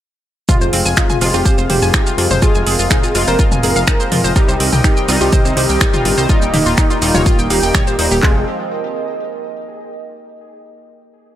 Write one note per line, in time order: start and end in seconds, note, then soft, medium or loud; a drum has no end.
0.49 1.19 C3 medium
0.49 1.19 G#3 medium
0.49 0.54 F4 medium
0.49 0.79 F4 loud
0.49 1.19 F4 loud
0.49 8.22 A#4 medium
0.49 kick loud
0.49 mid tom medium
0.49 shaker medium
0.61 0.70 F1 medium
0.61 0.69 C5 medium
0.61 shaker soft
0.67 8.23 D#5 medium
0.73 0.83 F1 loud
0.73 0.85 C4 medium
0.73 open hi-hat loud
0.85 0.94 F1 medium
0.85 0.97 G#5 medium
0.85 shaker soft
0.93 4.36 F5 medium
0.97 1.06 D#4 medium
0.97 1.20 F4 medium
0.97 finger snap loud
0.97 kick loud
0.97 shaker medium
1.10 1.15 G#5 loud
1.10 mid tom medium
1.10 shaker soft
1.21 1.31 F1 medium
1.21 2.39 C3 medium
1.21 2.40 G#3 medium
1.21 2.39 F4 loud
1.21 1.30 F4 medium
1.21 open hi-hat loud
1.21 shaker medium
1.34 1.43 F1 medium
1.34 1.45 F4 medium
1.34 1.56 G4 loud
1.34 shaker soft
1.45 1.54 C5 loud
1.45 kick loud
1.45 shaker medium
1.58 1.67 F1 medium
1.58 1.66 C5 medium
1.58 shaker soft
1.70 1.79 F1 loud
1.70 2.33 G4 loud
1.70 1.75 C5 medium
1.70 open hi-hat loud
1.70 mid tom medium
1.82 1.91 F1 medium
1.82 1.93 G#5 medium
1.82 shaker soft
1.94 2.03 D#4 medium
1.94 finger snap loud
1.94 kick loud
1.94 shaker medium
2.06 2.17 F4 loud
2.06 shaker soft
2.18 2.28 F2 medium
2.18 2.27 F4 medium
2.18 open hi-hat loud
2.31 2.40 F1 medium
2.31 2.42 C5 loud
2.31 mid tom medium
2.31 shaker soft
2.42 3.12 C3 medium
2.42 3.12 G#3 medium
2.42 3.12 F4 loud
2.42 2.54 F4 loud
2.42 2.73 G#4 loud
2.42 kick loud
2.42 shaker medium
2.55 2.64 F1 medium
2.55 2.66 G#5 medium
2.55 shaker soft
2.66 2.76 F1 loud
2.66 2.75 G#4 medium
2.66 open hi-hat loud
2.79 2.88 F1 medium
2.79 2.87 F4 medium
2.79 shaker soft
2.91 3.00 D#4 medium
2.91 3.13 G#4 medium
2.91 finger snap loud
2.91 kick loud
2.91 mid tom medium
2.91 shaker medium
3.03 3.11 F4 medium
3.03 shaker soft
3.15 3.24 F1 medium
3.15 4.33 C3 loud
3.15 4.33 G#3 medium
3.15 4.33 F4 loud
3.15 3.24 F4 medium
3.15 open hi-hat loud
3.15 shaker medium
3.27 3.36 F1 medium
3.27 3.50 A#4 loud
3.27 3.39 C5 loud
3.27 shaker soft
3.39 3.51 F4 loud
3.39 kick loud
3.39 shaker medium
3.52 3.61 F1 medium
3.52 3.63 G#5 medium
3.52 mid tom medium
3.52 shaker soft
3.63 3.73 F1 loud
3.63 3.72 G#4 medium
3.63 4.27 A#4 loud
3.63 open hi-hat loud
3.63 shaker soft
3.76 3.85 F1 medium
3.76 3.84 F5 medium
3.76 shaker soft
3.87 3.96 D#4 medium
3.87 finger snap loud
3.87 kick loud
3.87 shaker medium
4.00 4.08 C5 medium
4.00 shaker soft
4.12 4.21 F2 medium
4.12 4.20 F4 medium
4.12 open hi-hat loud
4.12 mid tom medium
4.24 4.33 F1 medium
4.24 4.29 C5 loud
4.24 shaker soft
4.36 5.06 C3 medium
4.36 8.19 D#3 medium
4.36 5.06 G3 medium
4.36 8.19 G3 medium
4.36 6.27 C4 loud
4.36 5.06 D#4 loud
4.36 4.41 F4 medium
4.36 4.66 G4 loud
4.36 kick loud
4.36 shaker medium
4.48 4.57 C2 medium
4.48 4.57 C5 medium
4.48 shaker soft
4.60 4.70 C2 medium
4.60 4.72 C4 medium
4.60 open hi-hat loud
4.73 4.82 C2 medium
4.73 4.84 G5 medium
4.73 8.23 G5 medium
4.73 mid tom medium
4.73 shaker soft
4.84 4.93 D#4 medium
4.84 5.07 G4 loud
4.84 finger snap loud
4.84 kick loud
4.84 shaker medium
4.97 5.02 G5 loud
4.97 shaker soft
5.08 5.18 C2 medium
5.08 6.27 C3 medium
5.08 6.27 G3 medium
5.08 6.27 D#4 loud
5.08 5.17 F4 medium
5.08 open hi-hat loud
5.08 shaker medium
5.21 5.30 C2 medium
5.21 5.32 F4 medium
5.21 5.44 G4 loud
5.21 shaker soft
5.33 5.41 C5 loud
5.33 kick loud
5.33 mid tom medium
5.33 shaker medium
5.45 5.54 C2 medium
5.45 5.53 C5 medium
5.45 shaker soft
5.57 5.66 C2 loud
5.57 6.20 G4 loud
5.57 5.62 C5 medium
5.57 open hi-hat loud
5.69 5.78 C2 medium
5.69 5.80 G5 medium
5.69 shaker soft
5.81 5.90 D#4 medium
5.81 finger snap loud
5.81 kick loud
5.81 shaker medium
5.94 6.04 F4 loud
5.94 mid tom medium
5.94 shaker soft
6.05 6.15 G1 loud
6.05 6.14 F4 medium
6.05 open hi-hat loud
6.18 6.27 C2 medium
6.18 6.29 C5 loud
6.18 shaker soft
6.29 6.99 A#2 medium
6.29 6.99 G3 medium
6.29 8.21 A#3 loud
6.29 6.60 D#4 loud
6.29 6.99 D#4 loud
6.29 6.41 F4 loud
6.29 kick loud
6.29 shaker medium
6.42 6.51 D#1 medium
6.42 6.53 G5 medium
6.42 shaker soft
6.53 6.63 D#1 loud
6.53 6.62 G4 medium
6.53 open hi-hat loud
6.53 mid tom medium
6.66 6.75 D#1 medium
6.66 6.74 F4 medium
6.66 shaker soft
6.78 6.87 D#4 medium
6.78 7.00 D#4 medium
6.78 finger snap loud
6.78 kick loud
6.78 shaker medium
6.90 6.98 F4 medium
6.90 shaker soft
7.02 7.12 D#1 medium
7.02 7.48 A#2 medium
7.02 7.48 G3 medium
7.02 7.48 D#4 loud
7.02 7.11 F4 medium
7.02 open hi-hat loud
7.02 shaker soft
7.14 7.23 D#1 medium
7.14 7.37 F4 loud
7.14 7.26 C#5 loud
7.14 mid tom medium
7.14 shaker soft
7.26 7.38 F4 loud
7.26 kick loud
7.26 shaker medium
7.39 7.48 D#1 medium
7.39 7.50 G5 medium
7.39 shaker soft
7.50 7.60 D#1 loud
7.50 7.96 A#2 medium
7.50 7.96 G3 medium
7.50 7.96 D#4 medium
7.50 8.14 G4 loud
7.50 7.62 F5 medium
7.50 open hi-hat loud
7.50 shaker soft
7.63 7.72 D#1 medium
7.63 7.74 G5 loud
7.63 shaker soft
7.75 7.83 C#5 loud
7.75 finger snap loud
7.75 kick loud
7.75 mid tom medium
7.75 shaker medium
7.87 7.98 C5 medium
7.87 shaker soft
7.99 8.08 D#1 medium
7.99 8.20 A#2 medium
7.99 8.20 G3 medium
7.99 8.20 D#4 loud
7.99 8.08 C5 medium
7.99 open hi-hat loud
8.11 8.20 D#1 medium
8.11 8.20 G4 medium
8.11 shaker soft
8.23 8.45 F1 loud
8.23 8.41 C3 medium
8.23 8.45 F3 medium
8.23 8.41 G#3 medium
8.23 8.45 G#3 medium
8.23 8.45 C4 medium
8.23 8.41 F4 loud
8.23 8.45 F4 medium
8.23 8.41 G#4 medium
8.23 10.13 A#4 medium
8.23 kick loud
8.23 clap medium
8.31 10.12 D#5 medium
8.38 10.13 G#5 medium